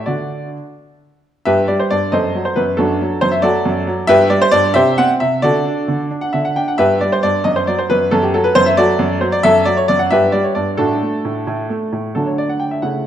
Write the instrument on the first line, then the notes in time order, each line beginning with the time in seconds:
grand piano
0.06 D3 D4 F#4 D5
1.45 G2 G4 B4 E5
1.68 G3 D5
1.80 C5
1.90 G2 D5
2.12 F#2 A4 C5 D#5
2.35 F#3
2.45 C5
2.56 F#2 B4
2.77 F#2 D4 F#4 A4
3.01 F#3
3.21 F#2 C5
3.32 E5
3.42 F#3 F#4 A4 D5
3.65 F#2
3.87 F#3
4.07 G2 G4 B4 E5
4.30 G3 D5
4.42 C5
4.51 G2 D5
4.74 C3 G4 C5 E5
4.98 C4 F#5
5.20 C3 E5
5.42 D3 F#4 A4 D5
5.66 D4
5.88 D3
6.11 D4
6.21 F#5
6.33 D3 E5
6.45 F#5
6.56 D4 G5
6.68 F#5
6.78 G2 G4 B4 E5
7.01 G3 D5
7.12 C5
7.23 G2 D5
7.44 F#2 D#5
7.56 C5
7.67 F#3 D5
7.79 C5
7.90 F#2 B4
8.11 F#2 A4
8.22 G4
8.34 F#3 A4
8.44 B4
8.55 F#2 C5
8.66 E5
8.77 F#3 F#4 A4 D5
8.99 F#2
9.21 F#3 C5
9.32 D5
9.43 F#2 A4 E5
9.65 F#3 D5
9.77 C#5
9.88 F#2 D5
9.99 F#5
10.11 G2 G4 B4 E5
10.32 G3 D5
10.44 C#5
10.55 G2 D5
10.77 A2 D4 F#4 A4
11.03 A3
11.25 A2
11.47 A2
11.70 A3
11.93 A2
12.15 D3 F#3 A3 D4 A4
12.26 C#5
12.38 D5
12.49 F#5
12.60 G5
12.71 E5
12.82 C#3 A3 E4 F#5